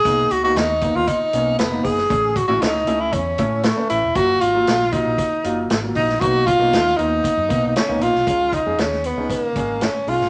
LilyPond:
<<
  \new Staff \with { instrumentName = "Tenor saxophone" } { \time 4/4 \key des \mixolydian \tempo 4 = 117 aes'8 ges'16 ges'16 ees'8. f'16 ees'4 ces'8 aes'8~ | aes'8 ges'16 ges'16 ees'8. e'16 cis'4 a8 e'8 | ges'8 f'4 ees'4. r8 ees'8 | ges'8 f'4 ees'4. des'8 f'8~ |
f'8 ees'8 des'8 ces'8 bes4 des'8 f'8 | }
  \new Staff \with { instrumentName = "Grand piano" } { \time 4/4 \key des \mixolydian <bes ces' ees'>8 r16 <bes ces' ees'>8 r16 <bes ces' ees'>8 r8 <bes ces' des'>8 r16 <bes ces' ees'>8 r16 | <a cis' gis'>8 r16 <a cis' e'>8 r16 <a cis' e'>8 r8 <a cis' e'>8 r16 <a cis' ces''>8 r16 | <ges bes f'>8 r16 <ges bes f'>8 r16 <ges bes f'>8 r8 <ges bes f'>8 r16 <ges bes f'>8 r16 | <bes ces' ees'>8 r16 <bes ces' ees'>8 r16 <bes ces' ees'>8 r8 <bes ces' ees'>8 r16 <bes ces' ees'>8 r16 |
<aes des' f'>8 r16 <aes des' aes'>8 r8 <aes des' ees'>8 r16 <aes des' aes'>8 r8 <aes des' f'>16 r16 | }
  \new Staff \with { instrumentName = "Fingered electric bass" } { \clef bass \time 4/4 \key des \mixolydian ces,8 des,8 ees,8. ees,16 r8 ces,8 r8 ges,,8 | a,,8. a,,16 cis,8 cis,8 e,8 a,8. r16 a,,16 e,,16 | ges,,8 aes,,8 bes,,8. bes,,16 r8 ges,,8 aes,,8 bes,,8 | ces,8. ces,16 ees,8 ees,8 r16 ges,16 ces16 ces,16 r16 des,16 bes,,16 ces,16 |
des,8. f,16 ees,8. des,16 des8 aes,,8. r16 ces,16 aes,,16 | }
  \new DrumStaff \with { instrumentName = "Drums" } \drummode { \time 4/4 <hh bd>8 hh8 <hh sn>8 <hh bd>8 <hh bd>8 hh8 <hh sn>8 <hho bd>16 sn16 | <hh bd>8 <hh bd>8 <hh sn>16 sn16 hh8 <hh bd>8 <hh bd>8 <hh sn>8 hh8 | <hh bd>8 hh8 <hh sn>16 sn16 <hh bd>8 <hh bd>8 hh8 <hh sn>8 <hho bd>16 sn16 | <hh bd>8 <hh bd>8 <hh sn>16 sn16 hh8 <hh bd>8 <hh bd>8 <hh sn>8 hh16 sn16 |
<hh bd>8 <hh bd>8 <hh sn>16 sn16 hh8 <hh bd>8 <hh bd>8 <hh sn>8 hho16 sn16 | }
>>